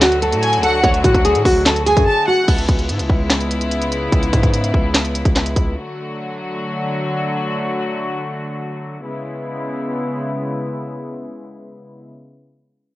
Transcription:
Already playing: 808-style bass D2, string section D3 F#3 A3 F#4
0.01 nylon-string guitar F#4, snare, clap, closed hi-hat
0.12 closed hi-hat
0.22 nylon-string guitar A4, closed hi-hat
0.32 808-style bass A2, closed hi-hat
0.42 violin section G#5, closed hi-hat
0.53 closed hi-hat
0.58 808-style bass D2
0.63 nylon-string guitar A4, violin section F#5, closed hi-hat
0.84 808-style bass D2, nylon-string guitar C#5, kick, closed hi-hat
0.94 closed hi-hat
1.04 808-style bass A2, nylon-string guitar F#4, kick, closed hi-hat
1.14 808-style bass D2, kick, closed hi-hat
1.25 nylon-string guitar G#4, closed hi-hat
1.35 808-style bass A2, closed hi-hat
1.45 808-style bass D2, nylon-string guitar F#4, kick, open hi-hat
1.66 nylon-string guitar A4, snare, clap, closed hi-hat
1.76 closed hi-hat
1.86 nylon-string guitar G#4, violin section G#5, closed hi-hat
1.97 808-style bass F#2, kick, closed hi-hat
2.07 violin section A5
2.27 nylon-string guitar F#4, violin section F#5
2.48 808-style bass C#2, string section C#3 G#3 B3 E4, kick, closed hi-hat, crash
2.58 closed hi-hat
2.69 808-style bass C#2, kick, closed hi-hat
2.79 closed hi-hat
2.89 808-style bass G#2, closed hi-hat
2.99 808-style bass C#2, closed hi-hat
3.10 808-style bass C#2, kick
3.30 snare, clap, closed hi-hat
3.41 closed hi-hat
3.51 closed hi-hat
3.61 closed hi-hat
3.71 closed hi-hat
3.82 closed hi-hat
3.92 closed hi-hat
4.12 808-style bass C#2, kick, closed hi-hat
4.23 closed hi-hat
4.33 808-style bass G#2, kick, closed hi-hat
4.43 kick, closed hi-hat
4.54 closed hi-hat
4.64 closed hi-hat
4.74 808-style bass C#2, kick
4.95 snare, clap, closed hi-hat
5.05 closed hi-hat
5.15 closed hi-hat
5.25 808-style bass C#2, kick, closed hi-hat
5.36 snare, clap, closed hi-hat
5.46 closed hi-hat
5.56 808-style bass C#2, kick, closed hi-hat
5.77 string section D3 F#3 A3 F#4
9.06 string section C#3 G#3 B3 E4

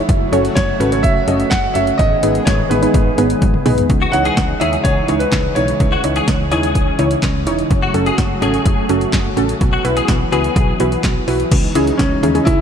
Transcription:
0.09 fm bass F#1, analog synth pad C#3 F#3 A3 F#4, kick, closed hi-hat
0.32 fm bass F#1, synth pluck C#4 F#4 A4 C#5, closed hi-hat
0.45 closed hi-hat
0.55 fm bass F#1, grand piano C#5, kick, snare, closed hi-hat
0.80 fm bass G#1, synth pluck C#4 F#4 A4 B4, closed hi-hat
0.92 synth pluck C#4 F#4 A4 C#5, closed hi-hat
1.03 fm bass F#1, grand piano E5, kick, closed hi-hat
1.28 fm bass F#1, synth pluck C#4 F#4 A4 D#5, closed hi-hat
1.40 closed hi-hat
1.50 fm bass F#1, grand piano F#5, kick, snare, clap, closed hi-hat
1.74 fm bass F#1, synth pluck C#4 F#4 A4 C#5, grand piano E5, closed hi-hat
1.87 closed hi-hat
1.98 fm bass G#1, analog synth pad D#3 G#3 B3 G#4, grand piano D#5, kick, closed hi-hat
2.23 fm bass G#1, synth pluck B3 D#4 G#4 B4, closed hi-hat
2.35 closed hi-hat
2.45 fm bass G#1, grand piano C#5, kick, snare, closed hi-hat
2.69 fm bass A1, synth pluck B3 D#4 G#4 B4, grand piano B4, closed hi-hat
2.82 synth pluck B3 D#4 G#4 B4, closed hi-hat
2.94 fm bass G#1, kick, closed hi-hat
3.18 fm bass G#1, synth pluck B3 D#4 G#4 B4, closed hi-hat
3.30 closed hi-hat
3.42 fm bass G#1, kick, closed hi-hat, high tom
3.54 mid tom
3.65 fm bass B1, synth pluck B3 D#4 G#4 B4, mid tom, open hi-hat
3.78 closed hi-hat, floor tom
3.90 fm bass C#2, analog synth pad C#3 E3 G#3 D#4, kick, closed hi-hat
4.02 clean electric guitar F#4
4.12 fm bass C#2, synth pluck D#4 E4 C#5, grand piano F#5, closed hi-hat
4.25 clean electric guitar G#4, closed hi-hat
4.37 fm bass C#2, kick, snare, closed hi-hat
4.60 fm bass D#2, synth pluck D#4 E4 C#5, clean electric guitar G#4, grand piano E5, closed hi-hat
4.73 closed hi-hat
4.84 fm bass C#2, grand piano C#5, kick, closed hi-hat
5.08 fm bass C#2, synth pluck D#4 E4 C#5, closed hi-hat
5.19 grand piano B4, closed hi-hat
5.32 fm bass C#2, kick, snare, clap, closed hi-hat
5.55 fm bass B1, synth pluck D#4 E4 C#5, grand piano C#5, closed hi-hat
5.68 closed hi-hat
5.80 fm bass C#2, analog synth pad C#4, kick, closed hi-hat
5.92 clean electric guitar F#4
6.04 fm bass C#2, synth pluck D#4 E4 C#5, closed hi-hat
6.16 clean electric guitar G#4, closed hi-hat
6.28 fm bass C#2, kick, snare, closed hi-hat
6.51 fm bass D#2, synth pluck D#4 E4 C#5, clean electric guitar G#4, closed hi-hat
6.63 closed hi-hat
6.75 fm bass C#2, kick, closed hi-hat
6.99 fm bass C#2, synth pluck D#4 E4 C#5, closed hi-hat
7.11 closed hi-hat
7.23 fm bass C#2, kick, snare, clap, closed hi-hat
7.47 fm bass E1, synth pluck D#4 E4 C#5, closed hi-hat
7.59 closed hi-hat
7.70 fm bass F#1, analog synth pad F#3 A3 F#4, kick, closed hi-hat
7.82 clean electric guitar F#4
7.94 fm bass F#1, synth pluck C#4 F#4 A4, closed hi-hat
8.06 clean electric guitar G#4, closed hi-hat
8.18 fm bass F#1, kick, snare, closed hi-hat
8.42 fm bass G#1, synth pluck C#4 F#4 A4, clean electric guitar G#4, closed hi-hat
8.54 closed hi-hat
8.65 fm bass F#1, kick, closed hi-hat
8.89 fm bass F#1, synth pluck C#4 F#4 A4, closed hi-hat
9.01 closed hi-hat
9.13 fm bass F#1, kick, snare, clap, closed hi-hat
9.37 fm bass A1, synth pluck C#4 F#4 A4, closed hi-hat
9.49 closed hi-hat
9.61 fm bass B1, analog synth pad E3 F#3 B3, kick, closed hi-hat
9.73 clean electric guitar F#4
9.85 fm bass B1, synth pluck E4 F#4 B4, closed hi-hat
9.97 clean electric guitar G#4, closed hi-hat
10.08 fm bass B1, kick, snare, closed hi-hat
10.32 fm bass C#2, synth pluck E4 F#4 B4, clean electric guitar G#4, closed hi-hat
10.44 closed hi-hat
10.56 fm bass B1, kick, closed hi-hat
10.80 fm bass B1, synth pluck E4 F#4 B4, closed hi-hat
10.92 closed hi-hat
11.04 fm bass B1, kick, snare, clap, closed hi-hat
11.28 fm bass B1, synth pluck E4 F#4 B4, open hi-hat
11.40 closed hi-hat
11.52 fm bass C#2, analog synth pad C#3 E3 G#3 D#4, kick, closed hi-hat, crash
11.75 fm bass C#2, synth pluck C#4 D#4 E4 G#4, closed hi-hat
11.87 closed hi-hat
11.98 fm bass C#2, grand piano C#4, kick, snare, closed hi-hat
12.23 fm bass D#2, synth pluck C#4 D#4 E4 G#4, closed hi-hat
12.35 synth pluck C#4 D#4 E4 G#4, closed hi-hat
12.45 fm bass C#2, grand piano E4, kick, closed hi-hat

